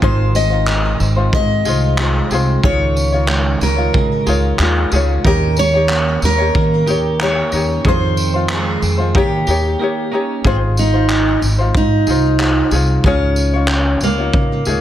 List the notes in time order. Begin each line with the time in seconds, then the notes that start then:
Already playing: G#3 C4 F4
0.02 G#1 D#3 D#4 F4 G#4 C5, kick
0.35 C4 D#5, tambourine
0.50 D#4 F4 C5
0.68 G#3, clap
1.00 G#1 C4, tambourine
1.16 D#4 F4 C5
1.33 G#2 G#3 D#5, kick
1.65 C2 D#4 F4 G#4 C5, tambourine
1.98 G#3 D#4 F4 G#4 C5, clap
2.30 C2 C4 D#4 F4 G#4 C5, tambourine
2.63 C#2 D#3 D#4 F4 G#4 C#5, kick
2.96 C#4, tambourine
3.12 D#4 F4 C#5
3.29 G#3, clap
3.61 C#2 C#4 A#4, tambourine
3.76 D#4 F4 C#5
3.94 C#3 G#3, kick
4.26 C#2 D#4 F4 G#4 C#5, tambourine
4.59 D#2 G#3 D#4 F4 G#4, clap
4.63 C#5
4.92 C#2 C#4 D#4 F4 G#4, tambourine
4.96 C#5
5.25 D#2 D#3 D#4 G4 A#4 C#5, kick
5.57 C#4 C#5, tambourine
5.74 D#4 G4 C#5
5.89 A#3, clap
6.22 D#2 C#4 A#4, tambourine
6.38 D#4 G4 C#5
6.55 D#3 A#3, kick
6.86 D#2 D#4 G4 A#4 C#5, tambourine
7.20 A#3 D#4 G4 A#4 C#5, clap
7.52 D#2 C#4 D#4 G4 A#4 C#5, tambourine
7.85 F2 D#3 D#4 F4 G#4 C5, kick
8.17 C4, tambourine
8.34 D#4 F4 C5
8.49 G#3 G#4, clap
8.82 F2 C4, tambourine
8.98 D#4 F4 C5
9.15 D#3 A#3 D#4 G4 A#4 C#5, kick
9.47 D#2 D#4 G4 A#4 C#5, tambourine
9.79 A#3 D#4 G4 A#4
9.83 C#5
10.12 C#4 D#4 G4 A#4 C#5
10.44 G#1 C4 D#4 F4 G#4 C5, kick
10.77 D#4, tambourine
10.93 D#4 F4 C5
11.10 clap
11.42 G#1, tambourine
11.59 D#4 F4 C5
11.74 G#2 D#4, kick
12.07 C2 D#4 F4 G#4 C5, tambourine
12.39 D#4 F4 G#4 C5, clap
12.71 C2 D#4 F4 G#4 C5, tambourine
13.04 C#2 C#4 D#4 F4 G#4 C#5, kick
13.36 tambourine
13.54 D#4 F4 C#5
13.68 clap
14.01 C#2 A#3, tambourine
14.18 D#4 F4 C#5
14.34 C#3, kick
14.65 C#2 D#4 F4 G#4, tambourine
14.70 C#5